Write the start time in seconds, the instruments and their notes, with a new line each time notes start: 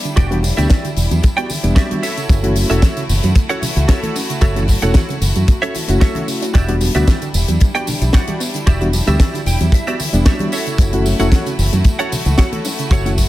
Already playing: violin section G3 D4 E4
0.04 synth arpeggio sound D3, closed hi-hat, tambourine, high bongo
0.16 fingered electric bass E1, synth arpeggio sound D3, clean electric guitar F#4 G4 D5 G5, kick, closed hi-hat, tambourine
0.31 synth arpeggio sound E3, reed electric piano G3 B3 D4 F#4, closed hi-hat, tambourine, high conga
0.43 synth arpeggio sound F#3, open hi-hat, tambourine, high bongo
0.57 fingered electric bass D2, reed electric piano G3 B3 D4 G4, synth arpeggio sound G3, clean electric guitar F#4 G4 D5 E5, closed hi-hat, tambourine, low conga
0.70 synth arpeggio sound E3, kick, snare, closed hi-hat, tambourine, high conga
0.84 synth arpeggio sound D3, closed hi-hat, tambourine
0.96 fingered electric bass E1, synth arpeggio sound E3, open hi-hat, tambourine, high bongo
1.11 fingered electric bass E2, synth arpeggio sound F#3, closed hi-hat, tambourine, high conga
1.23 synth arpeggio sound G3, muted clean electric guitar stroke, kick, closed hi-hat, tambourine
1.37 synth arpeggio sound B3, clean electric guitar F#4 G4 D5 G5, closed hi-hat, tambourine, high bongo
1.50 synth arpeggio sound D3, open hi-hat, tambourine, high conga
1.63 fingered electric bass E1, synth arpeggio sound E3, reed electric piano G3 B3 D4, muted clean electric guitar stroke, closed hi-hat, tambourine
1.75 synth arpeggio sound F#3, clean electric guitar F#4 G4 D5 E5, kick, snare, closed hi-hat, tambourine
1.91 synth arpeggio sound G3, closed hi-hat, tambourine, high bongo, high conga
2.02 violin section A3 F#4, synth arpeggio sound C#4, clean electric guitar F#4 A4 C#5 E5, open hi-hat, tambourine
2.17 synth arpeggio sound C#3, closed hi-hat, tambourine
2.29 fingered electric bass F#1, synth arpeggio sound C#3, kick, closed hi-hat, tambourine, high bongo
2.43 synth arpeggio sound E3, reed electric piano A3 C#4 E4 F#4, closed hi-hat, tambourine, high conga
2.55 synth arpeggio sound F#3, open hi-hat, tambourine
2.70 fingered electric bass E1, reed electric piano A3 C#4 E4 F#4, synth arpeggio sound A3, clean electric guitar F#4 A4 C#5 E5, closed hi-hat, tambourine, low conga
2.82 synth arpeggio sound E3, kick, snare, closed hi-hat, tambourine, high bongo, high conga
2.97 synth arpeggio sound C#3, closed hi-hat, tambourine
3.09 fingered electric bass F#1, synth arpeggio sound E3, open hi-hat, tambourine, low conga
3.23 fingered electric bass F#2, synth arpeggio sound F#3, closed hi-hat, tambourine, high bongo, high conga
3.35 synth arpeggio sound A3, muted clean electric guitar stroke, kick, closed hi-hat, tambourine
3.49 synth arpeggio sound C#4, clean electric guitar F#4 A4 C#5 F#5, closed hi-hat, tambourine
3.62 synth arpeggio sound C#3, open hi-hat, tambourine, high conga, low conga
3.76 fingered electric bass C#2, synth arpeggio sound E3, muted clean electric guitar stroke, closed hi-hat, tambourine, high bongo
3.88 synth arpeggio sound F#3, clean electric guitar F#4 A4 C#5 E5, kick, snare, closed hi-hat, tambourine
4.03 synth arpeggio sound A3, closed hi-hat, tambourine, high conga
4.16 synth arpeggio sound C#4, open hi-hat, tambourine, high bongo
4.29 synth arpeggio sound C#3, closed hi-hat, tambourine
4.41 fingered electric bass F#1, synth arpeggio sound C#3, clean electric guitar F#4 A4 C#5 E5, kick, closed hi-hat, tambourine
4.55 synth arpeggio sound E3, reed electric piano A3 C#4 E4 F#4, closed hi-hat, tambourine, high conga
4.68 synth arpeggio sound F#3, kick, open hi-hat, tambourine, high bongo
4.82 fingered electric bass E1, reed electric piano A3 C#4 E4 A4, synth arpeggio sound A3, clean electric guitar F#4 A4 C#5 F#5, closed hi-hat, tambourine, low conga
4.94 synth arpeggio sound E3, kick, snare, closed hi-hat, tambourine, high conga
4.96 tambourine
5.09 synth arpeggio sound C#3, closed hi-hat, tambourine, high bongo
5.21 fingered electric bass F#1, synth arpeggio sound E3, open hi-hat, tambourine, low conga
5.35 fingered electric bass F#2, synth arpeggio sound F#3, closed hi-hat, tambourine, high conga
5.48 synth arpeggio sound A3, muted clean electric guitar stroke, kick, closed hi-hat, tambourine
5.62 synth arpeggio sound C#4, clean electric guitar F#4 A4 C#5 E5, closed hi-hat, tambourine, high bongo
5.74 synth arpeggio sound E4, open hi-hat, tambourine, high conga
5.88 fingered electric bass F#1, synth arpeggio sound C#3, reed electric piano A3 C#4 E4 F#4, muted clean electric guitar stroke, closed hi-hat, tambourine
5.90 tambourine
6.00 synth arpeggio sound F#3, clean electric guitar F#4 A4 C#5 E5, kick, snare, closed hi-hat, tambourine, high bongo
6.15 synth arpeggio sound C#3, closed hi-hat, tambourine, high conga
6.28 synth arpeggio sound C#3, open hi-hat, tambourine
6.42 synth arpeggio sound C#4, closed hi-hat, tambourine
6.54 fingered electric bass E1, synth arpeggio sound D3, violin section G3 D4 E4, clean electric guitar F#4 G4 D5, kick, closed hi-hat, tambourine
6.55 clean electric guitar E5, tambourine
6.68 synth arpeggio sound E3, reed electric piano G3 B3 D4 F#4, closed hi-hat, tambourine, high bongo, high conga
6.80 synth arpeggio sound F#3, open hi-hat, tambourine
6.94 fingered electric bass D2, reed electric piano G3 B3 D4 F#4, synth arpeggio sound G3, clean electric guitar F#4 G4 D5 E5, closed hi-hat, tambourine, low conga
7.07 synth arpeggio sound E3, kick, snare, closed hi-hat, tambourine, high bongo, high conga
7.22 synth arpeggio sound D3, closed hi-hat, tambourine
7.34 fingered electric bass E1, synth arpeggio sound E3, open hi-hat, tambourine, low conga
7.48 fingered electric bass E2, synth arpeggio sound F#3, closed hi-hat, tambourine, high conga
7.60 synth arpeggio sound G3, muted clean electric guitar stroke, kick, closed hi-hat, tambourine, high bongo
7.75 synth arpeggio sound B3, clean electric guitar F#4 G4 D5 G5, closed hi-hat, tambourine
7.87 synth arpeggio sound D3, open hi-hat, tambourine, high conga, low conga
8.01 fingered electric bass B1, synth arpeggio sound E3, muted clean electric guitar stroke, closed hi-hat, tambourine, high bongo
8.13 synth arpeggio sound F#3, clean electric guitar F#4 G4 D5 F#5, kick, snare, closed hi-hat, tambourine
8.27 synth arpeggio sound G3, closed hi-hat, tambourine, high conga
8.40 synth arpeggio sound B3, open hi-hat, tambourine
8.54 synth arpeggio sound D3, closed hi-hat, tambourine, high bongo
8.67 fingered electric bass E1, synth arpeggio sound D3, clean electric guitar F#4 G4 D5 E5, kick, closed hi-hat, tambourine
8.81 synth arpeggio sound E3, reed electric piano G3 B3 D4 F#4, closed hi-hat, tambourine, high conga
8.93 synth arpeggio sound F#3, open hi-hat, tambourine, high bongo
9.07 fingered electric bass D2, reed electric piano G3 B3 D4 G4, synth arpeggio sound G3, clean electric guitar F#4 G4 D5 E5, closed hi-hat, tambourine, low conga
9.20 synth arpeggio sound E3, kick, snare, closed hi-hat, tambourine, high conga
9.34 synth arpeggio sound D3, closed hi-hat, tambourine
9.46 fingered electric bass E1, synth arpeggio sound E3, clean electric guitar G5, open hi-hat, tambourine, high bongo
9.60 fingered electric bass E2, synth arpeggio sound F#3, closed hi-hat, tambourine, high conga
9.72 synth arpeggio sound G3, clean electric guitar E5, muted clean electric guitar stroke, kick, closed hi-hat, tambourine
9.87 synth arpeggio sound B3, clean electric guitar F#4 G4 D5 E5, closed hi-hat, tambourine, high bongo
10.00 synth arpeggio sound D3, open hi-hat, tambourine, high conga
10.13 fingered electric bass E1, synth arpeggio sound E3, reed electric piano G3 B3 D4, muted clean electric guitar stroke, closed hi-hat, tambourine
10.26 synth arpeggio sound F#3, clean electric guitar F#4 G4 C#5 D5 E5, kick, snare, closed hi-hat, tambourine
10.39 synth arpeggio sound G3, closed hi-hat, tambourine, high bongo, high conga
10.52 violin section A3 F#4, synth arpeggio sound C#4, clean electric guitar F#4 A4 C#5 E5, open hi-hat, tambourine
10.66 synth arpeggio sound C#3, closed hi-hat, tambourine
10.78 fingered electric bass F#1, synth arpeggio sound C#3, kick, closed hi-hat, tambourine, high bongo
10.93 synth arpeggio sound E3, reed electric piano A3 C#4 E4 F#4, closed hi-hat, tambourine, high conga
11.06 synth arpeggio sound F#3, open hi-hat, tambourine
11.19 fingered electric bass E1, reed electric piano A3 C#4 E4 F#4, synth arpeggio sound A3, clean electric guitar F#4 A4 C#5 F#5, closed hi-hat, tambourine, low conga
11.32 synth arpeggio sound E3, kick, snare, closed hi-hat, tambourine, high bongo, high conga
11.46 synth arpeggio sound C#3, closed hi-hat, tambourine
11.59 fingered electric bass F#1, synth arpeggio sound E3, open hi-hat, tambourine, low conga
11.73 fingered electric bass F#2, synth arpeggio sound F#3, closed hi-hat, tambourine, high bongo, high conga
11.84 synth arpeggio sound A3, muted clean electric guitar stroke, kick, closed hi-hat, tambourine
11.99 synth arpeggio sound C#4, clean electric guitar F#4 A4 C#5 F#5, closed hi-hat, tambourine
12.12 synth arpeggio sound C#3, open hi-hat, tambourine, high conga, low conga
12.25 fingered electric bass C#2, synth arpeggio sound E3, muted clean electric guitar stroke, closed hi-hat, tambourine, high bongo
12.38 synth arpeggio sound F#3, clean electric guitar F#4 A4 C#5 F#5, kick, snare, closed hi-hat, tambourine
12.52 synth arpeggio sound A3, closed hi-hat, tambourine, high conga
12.65 synth arpeggio sound C#4, open hi-hat, tambourine, high bongo
12.79 synth arpeggio sound C#3, closed hi-hat, tambourine
12.91 fingered electric bass F#1, synth arpeggio sound C#3, clean electric guitar F#4 A4 C#5 F#5, kick, closed hi-hat, tambourine
13.05 synth arpeggio sound E3, reed electric piano A3 C#4 E4 F#4, closed hi-hat, tambourine, high conga
13.18 synth arpeggio sound F#3, kick, open hi-hat, tambourine, high bongo